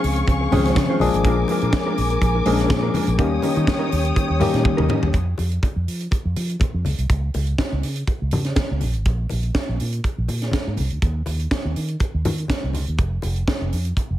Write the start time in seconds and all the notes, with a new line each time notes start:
Already playing: F3 G#3 C4 C#4 G#4 F5 C#6
0.03 C#2, muted clean electric guitar stroke, open hi-hat
0.16 muted clean electric guitar stroke, closed hi-hat
0.27 C#2, muted clean electric guitar stroke, kick, closed hi-hat, muted conga
0.41 muted clean electric guitar stroke
0.51 C#2 D#3 G#3 C4 C#4 F4 G#4 C5, open hi-hat, muted conga, low conga
0.57 F3
0.65 G#3 C#4 F4 C5, snare, closed hi-hat
0.74 C#3, muted clean electric guitar stroke, kick, snare, closed hi-hat, high conga
0.90 G#3 C#4 F4 C5
1.00 A#1 F3 G#3 A#3 D4 F4 G#4 A#4 G#5 D6, open hi-hat, high conga
1.13 G#1, muted clean electric guitar stroke, closed hi-hat
1.24 A#1 G#3 D4 F4 A#4, kick, closed hi-hat, muted conga
1.38 muted clean electric guitar stroke
1.48 G#3 D4 F4 A#4, open hi-hat, muted conga
1.61 A#2 G#3 D4 F4 A#4, closed hi-hat
1.73 muted clean electric guitar stroke, kick, snare, closed hi-hat, high conga
1.87 G#3 D4 F4 A#4
1.98 A#1, muted clean electric guitar stroke, open hi-hat
2.10 muted clean electric guitar stroke, closed hi-hat
2.21 A#1, muted clean electric guitar stroke, kick, closed hi-hat, muted conga
2.35 muted clean electric guitar stroke
2.45 A#1 F3 G#3 A#3 C#4 D4 F4 G#4 A#4, open hi-hat, muted conga
2.53 D4
2.59 G#3 D4 F4 A#4, snare, closed hi-hat
2.69 A#2, muted clean electric guitar stroke, kick, snare, closed hi-hat, high conga
2.83 G#3 D4 F4 A#4
2.94 G#3 D4 F4 A#4, open hi-hat, high conga
3.07 A#1, muted clean electric guitar stroke, closed hi-hat
3.18 D#2 D#3 G3 A#3 C#4 D#4 G4 A#4 C#5 G5 D#6, kick, closed hi-hat
3.31 muted clean electric guitar stroke
3.42 G3 C#4 D#4 A#4, open hi-hat, muted conga
3.55 D#3 G3 C#4 D#4 A#4, closed hi-hat
3.66 muted clean electric guitar stroke, kick, snare, closed hi-hat, high conga
3.79 G3 C#4 D#4 A#4
3.91 D#2, muted clean electric guitar stroke, open hi-hat
4.04 muted clean electric guitar stroke, closed hi-hat
4.15 D#3, muted clean electric guitar stroke, kick, closed hi-hat, muted conga
4.28 D#2, muted clean electric guitar stroke
4.40 D#3 G3 A#3 C#4 D#4 G4 A#4, open hi-hat, muted conga, low conga
4.53 A#2 G3 C#4 D#4 A#4, snare, closed hi-hat
4.63 D#3, muted clean electric guitar stroke, kick, high tom, high conga
4.77 D#2 G3 C#4 D#4 A#4, mid tom
4.88 G3 C#4 D#4 A#4, mid tom, high conga
5.02 D#2, muted clean electric guitar stroke, floor tom
5.13 F2, kick, closed hi-hat, muted conga
5.38 F2, open hi-hat, muted conga
5.52 closed hi-hat
5.63 kick, closed hi-hat, high conga
5.76 F2
5.88 F3, open hi-hat
6.00 closed hi-hat
6.11 kick, closed hi-hat, muted conga
6.25 F2
6.36 F3, open hi-hat, muted conga
6.50 closed hi-hat
6.60 kick, closed hi-hat, high conga
6.74 F2
6.85 C#2, open hi-hat, high conga
6.98 C2, closed hi-hat
7.10 C#2, kick, closed hi-hat, muted conga
7.34 C#2, open hi-hat, muted conga
7.47 closed hi-hat
7.58 kick, snare, closed hi-hat, high conga
7.72 C#2
7.83 C#3, open hi-hat
7.96 closed hi-hat
8.07 kick, closed hi-hat, muted conga
8.22 C#2
8.31 C#3, open hi-hat, muted conga, low conga
8.45 snare, closed hi-hat
8.56 kick, snare, closed hi-hat, high conga
8.71 C#2
8.80 A#1, open hi-hat, high conga
8.93 G#1, closed hi-hat
9.05 A#1, kick, closed hi-hat
9.29 A#1, open hi-hat, muted conga
9.43 closed hi-hat
9.55 kick, snare, closed hi-hat, high conga
9.69 A#1
9.80 A#2, open hi-hat
9.92 closed hi-hat
10.04 kick, closed hi-hat, muted conga
10.18 A#1
10.28 A#2, open hi-hat, muted conga
10.42 snare, closed hi-hat
10.51 kick, snare, closed hi-hat, high conga
10.67 G#2
10.77 C2, open hi-hat, high conga
10.90 D2, closed hi-hat
11.02 D#2, kick, closed hi-hat
11.26 D#2, open hi-hat, muted conga
11.40 closed hi-hat
11.51 kick, snare, closed hi-hat, high conga
11.65 D#2
11.76 D#3, open hi-hat
11.88 closed hi-hat
12.00 kick, closed hi-hat, muted conga
12.14 D#2
12.25 D#3, open hi-hat, muted conga, low conga
12.38 closed hi-hat
12.48 kick, snare, closed hi-hat, high conga
12.64 C2
12.73 C#2, open hi-hat, high conga
12.87 D#2, closed hi-hat
12.98 F1, kick, closed hi-hat, muted conga
13.22 F1, open hi-hat, muted conga
13.36 closed hi-hat
13.48 kick, snare, closed hi-hat, high conga
13.61 F1
13.73 F2, open hi-hat
13.85 closed hi-hat
13.97 kick, closed hi-hat, muted conga
14.10 F1